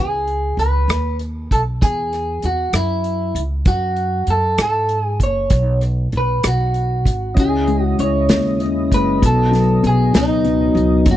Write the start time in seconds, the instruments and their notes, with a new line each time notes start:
Already playing: upright bass C#2, clean electric guitar G#4
0.27 closed hi-hat
0.57 upright bass C#2, clean electric guitar B4, closed hi-hat
0.88 upright bass D#2, cross-stick, closed hi-hat
1.19 closed hi-hat
1.51 upright bass B1, clean electric guitar A4, kick, closed hi-hat
1.82 upright bass E2, clean electric guitar G#4, kick, closed hi-hat
2.13 cross-stick, closed hi-hat
2.42 upright bass E2, clean electric guitar F#4, closed hi-hat
2.73 upright bass F#2, clean electric guitar E4, cross-stick, closed hi-hat
3.04 closed hi-hat
3.35 upright bass C#2, closed hi-hat
3.65 upright bass F#2, clean electric guitar F#4, kick, closed hi-hat
3.96 closed hi-hat
4.27 upright bass F#2, clean electric guitar A4, closed hi-hat
4.58 upright bass G#2, clean electric guitar A4, cross-stick, closed hi-hat
4.89 closed hi-hat
5.02 clean electric guitar G#4
5.20 upright bass F#1, clean electric guitar C#5, kick, closed hi-hat
5.50 upright bass B1, kick, closed hi-hat
5.81 cross-stick, closed hi-hat
6.12 upright bass B1, closed hi-hat
6.17 clean electric guitar B4
6.43 upright bass B1, clean electric guitar F#4, cross-stick, closed hi-hat
6.74 closed hi-hat
7.05 upright bass G#1, kick, closed hi-hat
7.34 upright bass C#2, tonewheel organ C#3 C#4 E4 D#5, felt piano C#3, kick, closed hi-hat
7.40 clean electric guitar G#4
7.67 felt piano G#3, closed hi-hat
7.84 clean electric guitar F#4
7.99 upright bass C#2, felt piano E4, clean electric guitar C#5, closed hi-hat
8.29 upright bass D#2, felt piano G#3, snare, closed hi-hat
8.60 felt piano C#3, closed hi-hat
8.91 upright bass F#1, felt piano G#3, clean electric guitar B4, kick, closed hi-hat
9.21 upright bass B1, felt piano B2, tonewheel organ F#3 B3, kick, closed hi-hat
9.26 clean electric guitar A4
9.51 felt piano F#3, snare, closed hi-hat
9.83 upright bass B1, felt piano B2, closed hi-hat
9.87 clean electric guitar G#4
10.13 upright bass C#2, felt piano F#3, clean electric guitar D#4, snare, closed hi-hat
10.44 felt piano B2, closed hi-hat
10.75 upright bass C#2, felt piano F#3, closed hi-hat
11.05 upright bass F#1, felt piano F#3, tonewheel organ C#4, kick, closed hi-hat
11.11 clean electric guitar F#4